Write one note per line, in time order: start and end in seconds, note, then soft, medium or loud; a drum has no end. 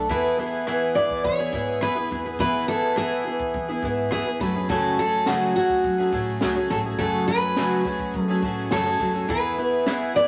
0.09 1.21 E2 medium
0.09 0.37 E3 medium
0.09 0.38 B3 medium
0.09 0.38 E4 medium
0.09 0.39 G#4 medium
0.09 0.64 B4 medium
0.09 kick loud
0.09 shaker medium
0.38 0.66 E3 medium
0.38 0.66 B3 medium
0.38 0.66 E4 medium
0.38 0.67 G#4 medium
0.38 shaker medium
0.53 shaker soft
0.67 0.95 E3 medium
0.67 0.96 B3 medium
0.67 0.96 E4 medium
0.67 0.97 G#4 medium
0.67 cross-stick loud
0.67 shaker medium
0.95 1.39 E3 medium
0.95 1.40 B3 medium
0.95 1.39 E4 medium
0.95 1.37 G#4 medium
0.95 1.24 D5 medium
0.95 shaker soft
1.10 kick medium
1.24 1.48 E3 medium
1.24 1.82 C#5 medium
1.24 kick medium
1.24 shaker medium
1.39 1.52 B3 soft
1.39 1.53 E4 medium
1.39 1.53 G#4 soft
1.52 1.77 G#2 medium
1.52 1.80 E3 medium
1.52 1.80 B3 medium
1.52 1.81 E4 medium
1.52 1.81 G#4 medium
1.52 kick medium
1.52 shaker medium
1.81 2.06 E2 medium
1.81 1.96 E3 medium
1.81 1.96 B3 medium
1.81 1.95 E4 medium
1.81 1.94 G#4 medium
1.81 2.36 B4 medium
1.81 cross-stick loud
1.81 shaker medium
1.95 2.10 B3 soft
1.95 2.10 E4 soft
1.95 2.10 G#4 medium
2.10 2.34 E2 medium
2.10 2.25 E3 medium
2.10 2.25 B3 medium
2.10 2.25 E4 medium
2.10 2.23 G#4 medium
2.10 shaker medium
2.25 2.39 B3 soft
2.25 2.39 E4 soft
2.25 2.39 G#4 soft
2.25 shaker soft
2.39 3.50 E2 medium
2.39 2.67 E3 medium
2.39 2.68 B3 medium
2.39 2.69 E4 medium
2.39 2.69 G#4 medium
2.39 2.67 B4 loud
2.39 kick loud
2.39 shaker medium
2.68 2.96 E3 medium
2.68 2.96 B3 medium
2.68 2.97 E4 medium
2.68 2.97 G#4 medium
2.68 2.95 A4 medium
2.68 shaker medium
2.83 shaker soft
2.96 3.24 E3 medium
2.96 3.25 B3 medium
2.96 3.26 E4 medium
2.96 4.08 G#4 medium
2.96 3.26 G#4 medium
2.96 cross-stick loud
2.96 shaker medium
3.25 3.69 E3 medium
3.25 3.69 B3 medium
3.25 3.68 E4 medium
3.25 3.67 G#4 medium
3.25 shaker soft
3.40 kick medium
3.40 shaker soft
3.54 3.78 E3 medium
3.54 kick medium
3.54 shaker medium
3.68 3.83 B3 soft
3.68 3.83 E4 medium
3.68 3.83 G#4 medium
3.82 4.06 G#2 medium
3.82 4.10 E3 medium
3.82 4.11 B3 medium
3.82 4.11 E4 medium
3.82 4.12 G#4 medium
3.82 kick medium
3.82 shaker soft
3.97 shaker soft
4.11 4.36 E2 medium
4.11 4.26 E3 medium
4.11 4.26 B3 medium
4.11 4.26 E4 medium
4.11 4.40 G#4 medium
4.11 4.25 G#4 medium
4.11 cross-stick loud
4.11 shaker medium
4.26 4.42 B3 soft
4.26 4.41 E4 soft
4.26 4.40 G#4 medium
4.40 5.58 F#2 loud
4.40 4.55 F#3 medium
4.40 4.55 A3 medium
4.40 4.55 C#4 medium
4.40 4.53 G#4 medium
4.40 4.69 B4 medium
4.40 kick medium
4.40 shaker medium
4.55 4.69 F#3 soft
4.55 4.69 A3 soft
4.55 4.70 C#4 soft
4.55 4.69 G#4 soft
4.68 4.98 F#2 medium
4.68 4.98 C#3 medium
4.68 4.96 F#3 medium
4.68 4.97 A3 medium
4.68 4.98 C#4 medium
4.68 4.98 G#4 medium
4.68 4.96 A4 medium
4.68 kick loud
4.68 shaker medium
4.97 5.26 F#3 medium
4.97 5.26 A3 medium
4.97 5.27 C#4 medium
4.97 5.27 G#4 medium
4.97 5.28 A4 medium
4.97 shaker soft
5.13 shaker medium
5.26 5.55 F#2 medium
5.26 5.56 C#3 medium
5.26 5.54 F#3 medium
5.26 5.55 A3 medium
5.26 5.55 C#4 medium
5.26 5.54 F#4 medium
5.26 5.56 G#4 medium
5.26 snare loud
5.26 shaker medium
5.55 5.98 F#3 soft
5.55 5.99 A3 medium
5.55 5.98 C#4 medium
5.55 6.74 F#4 medium
5.55 5.97 G#4 medium
5.55 shaker soft
5.70 kick medium
5.70 shaker soft
5.84 6.08 F#3 medium
5.84 kick medium
5.84 shaker medium
5.98 6.11 F#3 soft
5.98 6.12 A3 soft
5.98 6.12 C#4 soft
5.98 6.13 G#4 medium
6.12 6.36 A2 medium
6.12 6.41 F#3 medium
6.12 6.41 A3 medium
6.12 6.41 C#4 medium
6.12 6.42 G#4 medium
6.12 kick medium
6.12 shaker medium
6.41 6.65 C#2 medium
6.41 6.56 F#2 medium
6.41 6.56 C#3 medium
6.41 6.56 F#3 medium
6.41 6.56 A3 medium
6.41 6.55 C#4 medium
6.41 6.54 G#4 medium
6.41 snare loud
6.41 shaker medium
6.55 6.69 F#3 soft
6.55 6.70 A3 soft
6.55 6.71 C#4 medium
6.55 6.70 G#4 medium
6.70 6.94 A1 medium
6.70 6.85 F#3 medium
6.70 6.85 A3 medium
6.70 6.84 C#4 medium
6.70 6.83 G#4 medium
6.70 6.78 A4 medium
6.70 shaker medium
6.84 6.98 F#3 soft
6.84 6.98 A3 soft
6.84 6.99 C#4 soft
6.84 6.99 G#4 soft
6.98 7.28 F#2 medium
6.98 8.10 F#2 medium
6.98 7.28 C#3 medium
6.98 7.27 F#3 medium
6.98 7.27 A3 medium
6.98 7.28 C#4 medium
6.98 7.28 G#4 medium
6.98 7.27 A4 medium
6.98 kick loud
6.98 shaker medium
7.28 7.56 F#3 medium
7.28 7.56 A3 medium
7.28 7.57 C#4 medium
7.28 7.57 G#4 medium
7.28 8.22 B4 medium
7.28 shaker medium
7.56 7.85 F#2 medium
7.56 7.85 C#3 medium
7.56 7.83 F#3 medium
7.56 7.85 A3 medium
7.56 7.85 C#4 medium
7.56 7.86 G#4 medium
7.56 snare loud
7.56 shaker medium
7.84 8.28 F#3 medium
7.84 8.29 A3 medium
7.84 8.28 C#4 medium
7.84 8.27 G#4 medium
7.84 kick medium
7.84 shaker soft
7.99 kick medium
8.14 8.38 F#3 medium
8.14 kick medium
8.14 shaker medium
8.22 8.67 A4 medium
8.28 8.41 F#3 soft
8.28 8.42 A3 medium
8.28 8.43 C#4 medium
8.28 8.43 G#4 medium
8.42 8.66 A2 medium
8.42 8.71 F#3 medium
8.42 8.71 A3 medium
8.42 8.71 C#4 medium
8.42 8.72 G#4 medium
8.42 kick medium
8.42 shaker medium
8.71 8.95 F#2 medium
8.71 8.86 F#2 medium
8.71 8.86 C#3 medium
8.71 8.86 F#3 medium
8.71 8.86 A3 medium
8.71 8.85 C#4 medium
8.71 8.84 G#4 medium
8.71 9.29 A4 medium
8.71 snare loud
8.71 shaker medium
8.85 8.99 F#3 soft
8.85 8.99 A3 soft
8.85 9.00 C#4 soft
8.85 9.00 G#4 medium
9.00 9.24 F#2 loud
9.00 9.14 F#3 medium
9.00 9.14 A3 medium
9.00 9.13 C#4 medium
9.00 9.12 G#4 medium
9.00 kick medium
9.00 shaker medium
9.14 9.28 F#3 soft
9.14 9.28 A3 soft
9.14 9.28 C#4 soft
9.14 9.28 G#4 soft
9.14 shaker medium
9.28 10.28 E2 medium
9.28 9.56 E3 medium
9.28 9.57 B3 medium
9.28 9.58 E4 medium
9.28 9.58 G#4 medium
9.28 10.11 B4 medium
9.28 kick loud
9.28 shaker medium
9.57 9.85 E3 medium
9.57 9.85 B3 medium
9.57 9.86 E4 medium
9.57 9.86 G#4 medium
9.57 shaker medium
9.73 shaker soft
9.86 10.14 E3 medium
9.86 10.15 B3 medium
9.86 10.15 E4 medium
9.86 10.16 G#4 medium
9.86 snare loud
9.86 shaker medium
10.14 10.28 E3 medium
10.14 10.28 B3 medium
10.14 10.28 E4 medium
10.14 10.28 G#4 medium
10.14 10.28 D5 medium
10.14 shaker soft